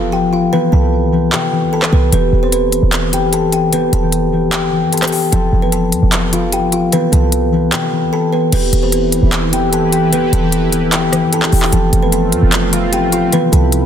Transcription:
Already playing: 808-style bass F1, harp F3 C4 G4 A4
0.12 kalimba G4 G5
0.33 kalimba F4 F5
0.52 harp E3 C4 B4, kalimba B3 B4
0.72 808-style bass C2, kalimba A4 A5
0.82 harp E3 C4 B4
1.12 harp E3 C4 B4
1.32 808-style bass C3, kalimba G4 G5, clap
1.52 harp E3 C4 B4
1.62 808-style bass C2
1.73 kalimba A4 A5
1.82 cross-stick, clap
1.93 808-style bass C2, kalimba B3 B4
2.12 808-style bass E1, harp E3 B3 G4, kalimba B3 B4, closed hi-hat
2.33 808-style bass E1
2.43 kalimba C4 C5
2.52 kalimba B3 B4, closed hi-hat
2.72 closed hi-hat
2.83 808-style bass E1
2.92 clap, closed hi-hat
3.12 harp E3 B3 G4, kalimba G4 G5, closed hi-hat
3.33 kalimba A4 A5, closed hi-hat
3.52 kalimba G4 G5, closed hi-hat
3.72 harp E3 B3 G4, kalimba B3 B4, closed hi-hat
3.93 808-style bass E1, kalimba A4 A5, closed hi-hat
4.02 harp E3 B3 G4
4.12 closed hi-hat
4.32 harp E3 B3 G4
4.52 kalimba G4 G5, clap, closed hi-hat
4.72 harp E3 B3 G4
4.83 808-style bass G2
4.93 kalimba A4 A5, closed hi-hat
4.97 808-style bass E1, closed hi-hat
5.02 cross-stick, clap, closed hi-hat
5.08 closed hi-hat
5.12 kalimba G4 G5, open hi-hat
5.32 808-style bass F1, harp F3 C4 A4, kalimba A4 A5, closed hi-hat
5.53 808-style bass F1
5.62 kalimba B3 B4
5.72 kalimba A4 A5, closed hi-hat
5.92 808-style bass F2, closed hi-hat
6.03 808-style bass F1
6.12 clap, closed hi-hat
6.32 harp F3 C4 A4, kalimba F4 F5, closed hi-hat
6.52 kalimba G4 G5, closed hi-hat
6.72 kalimba F4 F5, closed hi-hat
6.92 harp E3 C4 B4, kalimba B3 B4, closed hi-hat
7.12 808-style bass C2, kalimba A4 A5, closed hi-hat
7.22 harp E3 C4 B4
7.32 closed hi-hat
7.52 harp E3 C4 B4
7.72 808-style bass C3, kalimba G4 G5, clap, closed hi-hat
7.92 harp E3 C4 B4
8.02 808-style bass C2
8.13 kalimba A4 A5
8.33 kalimba B3 B4
8.52 808-style bass E1, harp E3 B3 G4, analog synth pad E3 E4 G4 B4, kalimba B3 B4, closed hi-hat, crash
8.73 808-style bass E1, closed hi-hat
8.83 kalimba C4 C5
8.92 kalimba B3 B4, closed hi-hat
9.12 closed hi-hat
9.22 808-style bass E1
9.32 clap, closed hi-hat
9.52 harp E3 B3 G4, kalimba G4 G5, closed hi-hat
9.73 kalimba A4 A5, closed hi-hat
9.92 kalimba G4 G5, closed hi-hat
10.12 harp E3 B3 G4, kalimba B3 B4, closed hi-hat
10.33 808-style bass E1, kalimba A4 A5, closed hi-hat
10.42 harp E3 B3 G4
10.52 closed hi-hat
10.72 harp E3 B3 G4, closed hi-hat
10.92 kalimba G4 G5, clap, closed hi-hat
11.12 harp E3 B3 G4, cross-stick, closed hi-hat
11.23 808-style bass G2
11.33 kalimba A4 A5, closed hi-hat
11.38 808-style bass E1
11.42 clap
11.52 808-style bass E1, kalimba G4 G5, open hi-hat
11.63 clap
11.72 808-style bass F1, harp F3 C4 A4, analog synth pad A3 C4 F4, kalimba A4 A5, closed hi-hat
11.93 808-style bass F1, closed hi-hat
12.03 kalimba B3 B4
12.12 kalimba A4 A5, closed hi-hat
12.32 808-style bass F2, closed hi-hat
12.42 808-style bass F1
12.52 clap, closed hi-hat
12.72 harp F3 C4 A4, kalimba F4 F5, closed hi-hat
12.93 kalimba G4 G5, closed hi-hat
13.12 kalimba F4 F5, closed hi-hat
13.32 analog synth pad C3 G3 E4 B4, harp E3 C4 B4, kalimba B3 B4, closed hi-hat
13.52 808-style bass C2, kalimba A4 A5, closed hi-hat
13.62 harp E3 C4 B4
13.72 closed hi-hat

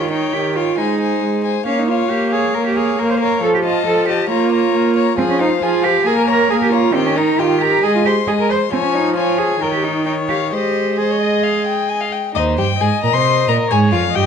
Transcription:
Already playing: viola D#3, violin C#5 G5
0.01 cello F4
0.10 cello D#4, violin C#5 G5
0.33 viola D#3, cello G4
0.56 cello F4, violin C#5 G5
0.78 viola G#3, cello D#4, violin C5 G#5
1.00 violin C5 G#5
1.22 viola G#3
1.44 violin C5 G#5
1.66 viola A#3, cello C#4, violin C#5 F5
1.79 cello D#4
1.88 cello F4, violin C#5 F5
2.10 viola A#3, cello G4
2.31 cello G#4, violin C#5 F5
2.54 viola A#3, cello A#4
2.66 cello G4
2.75 cello G#4, violin C#5 F5
2.99 viola A#3, cello A#4
3.10 cello C5
3.19 cello A#4, violin C#5 F5
3.42 viola F3, cello A4
3.55 cello G4
3.64 cello F4, violin D#5 A5
3.86 viola F3, cello A4
4.08 cello G4, violin D#5 A5
4.29 viola A#3, cello F4, violin C#5 A#5
4.52 violin C#5 A#5
4.74 viola A#3
4.96 violin C#5 A#5
5.18 viola F3, cello C4, violin G#4 G#5
5.30 cello C#4
5.40 cello D#4, violin C5 F5
5.62 viola F3, cello F4, violin G#4 G#5
5.83 cello G4, violin C5 F5
6.06 viola A#3, cello G#4, violin A#4 G#5
6.18 cello A#4
6.28 cello A#4, violin C#5 A#5
6.50 viola A#3, cello G#4, violin A#4 G#5
6.62 cello G4
6.72 cello F4, violin C#5 A#5
6.94 viola D#3, cello C4, violin G4 G5
7.06 cello C#4
7.16 cello D#4, violin A#4 A#5
7.39 viola D#3, cello F4, violin G4 G5
7.61 cello G4, violin A#4 A#5
7.83 viola G#3, cello G#4, violin D#5 G#5
7.95 cello F4
8.05 cello G4, violin C5 C6
8.27 viola G#3, cello G#4, violin D#5 G#5
8.40 cello A#4
8.50 violin C5 C6, cello C5
8.72 viola F3, cello C4, violin C#5 G#5
8.84 cello C#4
8.95 cello D#4
9.17 cello F4, violin C#5 G#5
9.38 cello G#4
9.61 viola D#3, cello A#4, violin C#5 G5
9.73 cello G4
9.83 cello D#4
10.06 cello D#4, violin C#5 G5
10.29 cello G4, violin F5
10.52 viola G#3, cello G4, violin C5 D#5
10.98 cello G#4, violin C5 D#5
11.11 violin C#5
11.21 violin D#5
11.44 violin F5
11.67 violin G5
11.89 violin G#5
12.01 violin F5
12.12 violin G5
12.35 cello D#2, violin D#4 D#5, viola C5
12.58 cello G2, violin G4 G5
12.80 cello G#2, violin G#4 G#5, viola D#5
13.03 cello A#2, violin A#4 A#5
13.13 cello C3, violin C5 C6
13.48 cello A#2, violin A#4 A#5
13.70 cello G#2, violin G#4 G#5, viola C#5
13.92 cello F2, violin F4 F5
14.14 cello G2, violin G4 G5, viola D#5

